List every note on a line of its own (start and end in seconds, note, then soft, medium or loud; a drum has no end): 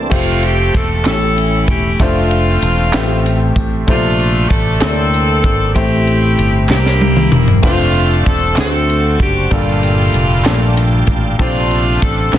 0.00 0.11 C2 medium
0.00 0.10 C3 medium
0.00 0.11 E3 medium
0.00 0.10 A3 medium
0.00 0.14 A#3 medium
0.00 0.11 C4 medium
0.00 0.11 D4 medium
0.00 0.13 D4 medium
0.00 0.10 E4 medium
0.00 0.13 E4 medium
0.00 0.11 A4 medium
0.00 0.13 D5 medium
0.10 0.70 F1 medium
0.10 0.84 A3 medium
0.10 0.85 F4 medium
0.10 0.85 G4 medium
0.10 0.85 C5 medium
0.10 0.85 E5 medium
0.10 kick medium
0.10 crash medium
0.14 1.03 A3 medium
0.14 1.03 C4 medium
0.14 0.43 F4 medium
0.43 0.75 G4 medium
0.43 ride soft
0.74 1.03 E1 medium
0.74 1.07 A4 medium
0.74 kick medium
0.74 ride medium
1.05 1.64 A1 loud
1.05 1.96 A2 medium
1.05 1.79 A3 medium
1.05 1.79 C#4 medium
1.05 1.96 C#4 medium
1.05 1.79 E4 medium
1.05 1.96 E4 medium
1.05 1.80 G4 medium
1.05 1.65 A4 loud
1.05 1.80 C#5 medium
1.05 snare loud
1.05 clap medium
1.05 ride medium
1.38 ride soft
1.68 1.97 E1 medium
1.68 2.01 G4 medium
1.68 kick loud
1.68 ride medium
2.00 2.58 F1 loud
2.00 2.73 A3 medium
2.00 3.53 A3 medium
2.00 3.53 C4 medium
2.00 2.73 D4 medium
2.00 3.57 F4 loud
2.00 2.74 F4 medium
2.00 2.74 C5 loud
2.00 2.74 E5 medium
2.00 kick medium
2.00 ride medium
2.31 ride soft
2.62 2.91 E1 medium
2.62 ride medium
2.93 3.84 A2 medium
2.93 3.67 A3 medium
2.93 3.67 C4 medium
2.93 3.68 G4 medium
2.93 3.01 B4 medium
2.93 3.67 E5 medium
2.93 snare loud
2.93 clap medium
2.93 ride medium
3.01 3.71 C5 medium
3.26 ride soft
3.56 3.85 A1 medium
3.56 kick loud
3.56 ride medium
3.87 4.46 A#1 loud
3.87 4.78 C3 medium
3.87 4.61 A3 medium
3.87 4.79 A3 medium
3.87 3.94 C4 medium
3.87 4.79 D4 medium
3.87 4.47 F4 loud
3.87 4.62 A4 medium
3.87 4.62 C5 loud
3.87 4.61 E5 medium
3.87 kick loud
3.87 ride medium
3.94 4.64 D4 medium
4.19 ride soft
4.49 4.79 A1 medium
4.49 4.80 A4 loud
4.49 kick medium
4.49 ride medium
4.80 5.40 D2 medium
4.80 5.55 A#3 medium
4.80 5.72 C4 medium
4.80 5.54 D4 medium
4.80 5.72 D4 medium
4.80 5.55 E4 medium
4.80 5.71 A4 loud
4.80 5.55 A4 medium
4.80 4.88 C#5 medium
4.80 snare loud
4.80 clap medium
4.80 ride medium
4.88 5.59 D5 medium
5.14 ride soft
5.44 5.73 G#1 medium
5.44 kick medium
5.44 ride medium
5.75 6.34 A1 medium
5.75 6.66 A2 medium
5.75 6.49 A3 medium
5.75 6.49 C4 medium
5.75 6.66 C4 medium
5.75 6.66 E4 medium
5.75 6.49 E4 medium
5.75 6.65 G4 loud
5.75 6.50 G4 medium
5.75 6.50 C5 loud
5.75 kick loud
5.75 ride medium
6.07 ride soft
6.39 6.67 G1 medium
6.39 ride medium
6.69 7.28 C2 loud
6.69 7.60 C3 medium
6.69 7.43 A#3 medium
6.69 7.60 A#3 medium
6.69 7.43 D4 medium
6.69 7.44 E4 medium
6.69 7.60 E4 medium
6.69 7.37 G4 loud
6.69 7.44 G4 medium
6.69 7.44 C5 medium
6.69 snare medium
6.69 clap medium
6.86 snare medium
7.01 high tom medium
7.17 mid tom medium
7.32 7.61 E1 medium
7.32 mid tom medium
7.48 floor tom medium
7.62 8.22 F1 loud
7.62 8.37 A3 medium
7.62 8.55 A3 medium
7.62 8.37 C4 medium
7.62 8.37 D4 medium
7.62 8.55 D4 medium
7.62 8.57 F4 medium
7.62 8.37 F4 medium
7.62 8.23 F4 loud
7.62 7.70 B4 medium
7.62 9.49 C5 medium
7.62 9.50 D5 medium
7.62 9.48 A5 medium
7.62 kick loud
7.62 crash medium
7.71 8.41 C5 medium
7.95 ride soft
8.26 8.59 A4 loud
8.26 kick medium
8.26 ride medium
8.56 9.16 D2 loud
8.56 9.48 D3 medium
8.56 9.31 A3 medium
8.56 9.31 C4 medium
8.56 9.49 C4 medium
8.56 9.31 D4 medium
8.56 9.31 F#4 medium
8.56 9.49 F#4 medium
8.56 9.17 A4 loud
8.56 8.65 B4 medium
8.56 9.51 F#5 medium
8.56 snare loud
8.56 clap medium
8.56 ride medium
8.65 9.35 C5 medium
8.90 ride soft
9.20 9.49 F#1 medium
9.20 9.53 G4 loud
9.20 kick loud
9.20 ride medium
9.49 10.10 G1 loud
9.49 10.42 G2 medium
9.49 10.25 A#2 medium
9.49 10.25 G3 medium
9.49 11.05 A3 medium
9.49 10.25 D4 medium
9.49 10.25 F4 medium
9.49 11.37 G4 medium
9.49 10.26 A4 medium
9.49 11.37 F5 medium
9.49 11.37 G5 medium
9.49 11.36 A5 medium
9.49 kick loud
9.49 ride medium
9.53 11.05 A#3 medium
9.53 11.09 F4 medium
9.83 ride soft
10.14 10.43 F1 medium
10.14 ride medium
10.44 11.05 A#1 medium
10.44 11.19 G3 medium
10.44 10.51 A3 medium
10.44 11.19 D4 medium
10.44 11.19 F4 medium
10.44 11.19 A4 medium
10.44 snare loud
10.44 clap medium
10.44 ride medium
10.51 11.22 A#2 medium
10.77 ride medium
11.07 11.37 A1 medium
11.07 kick loud
11.07 ride medium
11.39 11.98 A#1 loud
11.39 12.30 C3 medium
11.39 12.31 A3 medium
11.39 12.13 C4 medium
11.39 12.13 D4 medium
11.39 12.31 D4 medium
11.39 12.14 F4 medium
11.39 11.99 F4 medium
11.39 12.13 A4 medium
11.39 12.33 A4 medium
11.39 12.14 C5 medium
11.39 12.38 D5 medium
11.39 12.32 A5 medium
11.39 12.33 C6 medium
11.39 kick medium
11.39 ride medium
11.71 ride soft
12.02 12.31 A1 medium
12.02 12.34 A4 loud
12.02 kick medium
12.02 ride medium
12.33 12.38 B1 loud
12.33 12.38 B2 medium
12.33 12.38 G#3 medium
12.33 12.38 B3 medium
12.33 12.38 D4 medium
12.33 12.38 F4 medium
12.33 12.38 B4 medium
12.33 12.38 B5 medium
12.33 snare loud
12.33 clap medium
12.33 ride medium